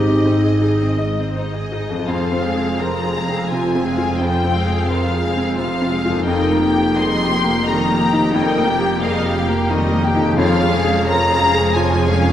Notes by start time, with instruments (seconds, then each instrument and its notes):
Already playing: double bass section G#1, cello section G#2, harp G#2 G#3 C4 D#4 A#4, grand piano G#2, clarinet G4, violin section D#5
0.08 viola section C4
0.26 grand piano C4, viola section D#4
0.44 viola section G#4
0.61 viola section D#4, grand piano G#4, clarinet G#4
0.82 viola section C4
0.98 viola section G#3, grand piano D#5
1.20 viola section C4
1.35 viola section D#4, grand piano C5, violin section D#5
1.55 viola section G#4
1.72 viola section D#4, grand piano G#4
1.90 harp F2, viola section C4
1.94 harp C4
1.99 harp F4
2.03 double bass section F1, cello section F2, harp G#4, violin section F5
2.08 grand piano F2, viola section F3 F4, violin section F4 C5
2.32 grand piano C4
2.43 viola section G#3 C4, violin section G#4 F5
2.55 grand piano G#4
2.79 viola section F3 F4, violin section F4 C5 A#5, grand piano A#4
3.04 grand piano G#4
3.16 viola section G#3 C4, violin section G#4 F5
3.29 grand piano C4
3.50 grand piano C3, viola section F3 F4, violin section F4 C5 G#5
3.75 grand piano C4
3.84 viola section G#3 C4, violin section G#4 F5
3.97 grand piano F4
4.18 grand piano F2, viola section F3 F4, violin section F4 C5 G5
4.44 grand piano C4
4.53 viola section G#3 C4, violin section G#4 F5
4.67 grand piano G#4
4.87 viola section F3 F4, violin section F4 C5 F5, grand piano A#4
5.13 grand piano G#4
5.23 viola section G#3 C4, violin section G#4 F5
5.37 grand piano C4
5.56 grand piano C3, viola section F3 F4, violin section F4 C5 F5
5.82 grand piano C4
5.91 viola section G#3 C4, violin section G#4 F5
6.05 harp F2, grand piano F4
6.13 harp A#3
6.17 harp D#4
6.22 double bass section F1, cello section F2, viola section G3 D#4, harp G4, violin section A#4 D#5 G5
6.27 grand piano F2
6.50 grand piano A#3
6.58 viola section A#3 G4, violin section G4 G5
6.74 grand piano G4
6.95 viola section G3 D#4, violin section A#4 D#5 C6
6.99 grand piano G#4
7.22 grand piano G4
7.29 viola section A#3 G4, violin section G5
7.33 violin section G4
7.44 grand piano A#3
7.64 grand piano D#3, viola section G3 D#4, violin section A#4 D#5 A#5
7.89 grand piano A#3
7.99 viola section A#3 G4, violin section G4 G5
8.13 grand piano D#4
8.31 grand piano F2, viola section G3 D#4, violin section A#4 D#5 G5
8.57 grand piano A#3
8.66 viola section A#3 G4, violin section G4 G5
8.79 grand piano G4
9.01 viola section G3 D#4, grand piano G#4, violin section A#4 D#5 F5
9.25 grand piano G4
9.36 viola section A#3 G4, violin section G4 G5
9.48 grand piano A#3
9.70 grand piano D#3, viola section G3 D#4, violin section A#4 D#5
9.93 grand piano A#3
10.04 viola section A#3 G4, violin section G4 G5
10.15 harp F2, grand piano D#4
10.23 harp G#3
10.28 harp C#4
10.32 harp G#4
10.37 double bass section F1, cello section F2, grand piano F2, viola section F3 F4, violin section F4 C#5 F5
10.62 grand piano G#3
10.72 viola section G#3 C#4, violin section G#4 F5
10.84 grand piano G#4
11.06 viola section F3 F4, violin section F4 C#5 A#5, grand piano A#4
11.31 grand piano G#4
11.41 viola section G#3 C#4, violin section G#4 F5
11.54 grand piano G#3
11.75 viola section F3 F4, grand piano F3, violin section F4 C#5 G#5
11.98 grand piano G#3
12.08 viola section G#3 C#4, violin section G#4 F5
12.21 grand piano C#4